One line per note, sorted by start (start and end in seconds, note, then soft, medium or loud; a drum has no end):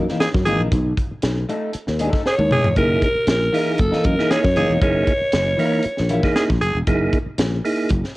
0.08 0.25 E3 medium
0.08 0.25 A#3 medium
0.08 0.25 D#4 medium
0.08 snare soft
0.20 0.29 G#4 loud
0.20 snare loud
0.20 closed hi-hat loud
0.34 0.44 F#2 medium
0.34 kick loud
0.34 snare soft
0.45 0.56 G#1 medium
0.45 0.67 E3 medium
0.45 0.67 A#3 medium
0.45 0.67 D#4 medium
0.45 0.62 G#4 loud
0.45 closed hi-hat medium
0.59 0.69 A#1 loud
0.72 0.92 B1 loud
0.72 kick loud
0.72 closed hi-hat loud
0.97 kick medium
0.97 closed hi-hat medium
1.11 muted fretless electric bass stroke soft
1.22 1.43 B1 medium
1.22 snare loud
1.22 closed hi-hat loud
1.49 1.69 A3 medium
1.49 1.70 D#4 medium
1.49 1.70 A4 medium
1.49 closed hi-hat medium
1.73 muted fretless electric bass stroke soft
1.73 closed hi-hat medium
1.87 2.08 D#2 medium
1.87 snare soft
1.99 2.21 A3 medium
1.99 2.21 D#4 medium
1.99 2.22 A4 medium
1.99 closed hi-hat medium
2.13 kick loud
2.13 snare soft
2.26 2.35 G#4 medium
2.26 2.74 C#5 loud
2.26 snare medium
2.38 2.48 D#2 medium
2.38 high tom medium
2.50 2.62 F#1 medium
2.50 2.68 G#4 loud
2.50 mid tom medium
2.64 2.76 E1 medium
2.64 floor tom medium
2.76 2.97 F#1 loud
2.76 3.08 A#3 medium
2.76 3.08 D#4 medium
2.76 3.08 E4 medium
2.76 3.08 G#4 medium
2.76 3.01 A#4 loud
2.76 kick loud
2.76 closed hi-hat medium
3.02 3.27 A#4 loud
3.02 kick medium
3.02 closed hi-hat medium
3.15 muted fretless electric bass stroke soft
3.27 3.48 A#1 loud
3.27 3.82 A#4 loud
3.27 snare loud
3.27 closed hi-hat loud
3.53 3.74 E3 medium
3.53 3.74 A#3 medium
3.53 3.79 A#3 medium
3.53 3.80 D#4 medium
3.53 3.75 D#4 medium
3.53 3.80 E4 medium
3.53 3.80 G#4 medium
3.53 open hi-hat medium
3.78 3.90 F#1 loud
3.78 4.08 A4 medium
3.78 kick medium
3.78 closed hi-hat medium
3.92 4.13 E3 medium
3.92 4.13 A#3 medium
3.92 4.13 D#4 medium
3.92 snare soft
4.04 4.16 F#2 loud
4.04 4.33 A#4 loud
4.04 kick loud
4.04 closed hi-hat medium
4.18 4.35 E3 medium
4.18 4.35 A#3 medium
4.18 4.45 A#3 medium
4.18 4.34 D#4 medium
4.18 4.45 D#4 medium
4.18 4.45 E4 medium
4.18 4.45 G#4 medium
4.18 snare soft
4.31 4.39 G#4 loud
4.31 4.82 C#5 loud
4.31 snare loud
4.31 closed hi-hat loud
4.44 4.54 F#2 medium
4.44 kick medium
4.44 snare soft
4.55 4.67 F#1 medium
4.55 4.77 E3 medium
4.55 4.77 A#3 medium
4.55 4.78 D#4 medium
4.55 4.73 G#4 loud
4.55 closed hi-hat medium
4.70 4.79 E1 medium
4.81 5.02 F#1 loud
4.81 5.13 A#3 medium
4.81 5.13 D#4 medium
4.81 5.13 E4 medium
4.81 5.13 G#4 medium
4.81 6.32 C#5 loud
4.81 kick loud
4.81 closed hi-hat medium
5.07 kick medium
5.07 closed hi-hat medium
5.21 muted fretless electric bass stroke medium
5.32 5.54 F#1 loud
5.32 snare loud
5.32 closed hi-hat loud
5.58 5.79 E3 medium
5.58 5.80 A#3 loud
5.58 5.85 A#3 medium
5.58 5.85 D#4 medium
5.58 5.85 E4 medium
5.58 5.80 E4 loud
5.58 5.85 A#4 medium
5.58 open hi-hat medium
5.83 muted fretless electric bass stroke medium
5.83 closed hi-hat loud
5.97 6.20 A#1 medium
5.97 snare soft
6.09 6.31 E3 medium
6.09 6.31 A#3 loud
6.09 6.32 E4 loud
6.09 closed hi-hat medium
6.23 6.50 A#3 medium
6.23 6.50 D#4 medium
6.23 6.50 E4 medium
6.23 6.50 G#4 loud
6.23 kick medium
6.23 snare soft
6.36 6.44 G#4 loud
6.36 snare loud
6.36 closed hi-hat medium
6.50 6.60 A#1 medium
6.50 kick loud
6.50 snare soft
6.61 6.73 F#1 medium
6.61 6.78 G#4 loud
6.61 closed hi-hat medium
6.75 6.85 E1 medium
6.87 7.08 F#1 loud
6.87 7.19 A#3 medium
6.87 7.19 D#4 medium
6.87 7.19 E4 medium
6.87 7.19 G#4 loud
6.87 kick loud
6.87 closed hi-hat loud
7.13 kick medium
7.13 closed hi-hat medium
7.26 muted fretless electric bass stroke soft
7.38 7.59 A#1 medium
7.38 snare loud
7.38 closed hi-hat loud
7.65 7.90 A#3 medium
7.65 7.90 D#4 medium
7.65 7.91 E4 medium
7.65 7.91 G#4 medium
7.65 open hi-hat medium
7.89 8.01 F#1 loud
7.89 kick loud
7.89 closed hi-hat medium
8.04 snare soft